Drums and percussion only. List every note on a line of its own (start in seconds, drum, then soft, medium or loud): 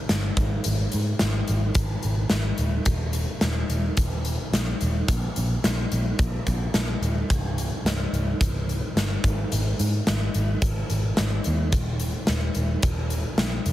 0.09 snare medium
0.09 closed hi-hat medium
0.37 kick medium
0.37 closed hi-hat soft
0.64 closed hi-hat medium
0.92 closed hi-hat medium
1.19 snare medium
1.19 closed hi-hat medium
1.48 closed hi-hat medium
1.75 kick loud
1.75 closed hi-hat medium
2.03 closed hi-hat soft
2.30 snare medium
2.30 closed hi-hat medium
2.58 closed hi-hat soft
2.85 kick medium
2.85 closed hi-hat medium
3.13 closed hi-hat soft
3.41 snare medium
3.41 closed hi-hat medium
3.70 closed hi-hat medium
3.97 kick medium
3.97 closed hi-hat medium
4.25 closed hi-hat soft
4.54 snare medium
4.54 closed hi-hat medium
4.81 closed hi-hat soft
5.08 kick medium
5.08 closed hi-hat medium
5.36 closed hi-hat soft
5.64 snare medium
5.64 closed hi-hat medium
5.92 closed hi-hat medium
6.19 kick loud
6.19 closed hi-hat medium
6.47 kick medium
6.47 closed hi-hat soft
6.74 snare medium
6.74 closed hi-hat medium
7.03 closed hi-hat soft
7.30 kick medium
7.30 closed hi-hat medium
7.58 closed hi-hat soft
7.86 snare medium
7.86 closed hi-hat medium
8.14 closed hi-hat soft
8.41 kick loud
8.41 closed hi-hat medium
8.69 closed hi-hat soft
8.97 snare medium
8.97 closed hi-hat medium
9.24 kick medium
9.24 closed hi-hat medium
9.52 closed hi-hat medium
9.79 closed hi-hat medium
10.07 snare medium
10.07 closed hi-hat medium
10.34 closed hi-hat medium
10.62 kick loud
10.62 closed hi-hat medium
10.90 closed hi-hat soft
11.17 snare medium
11.17 closed hi-hat medium
11.44 closed hi-hat medium
11.72 kick medium
11.72 closed hi-hat medium
12.00 closed hi-hat soft
12.27 snare loud
12.27 closed hi-hat medium
12.55 closed hi-hat soft
12.82 kick loud
12.82 closed hi-hat medium
13.10 closed hi-hat soft
13.38 snare medium
13.38 closed hi-hat medium
13.66 closed hi-hat soft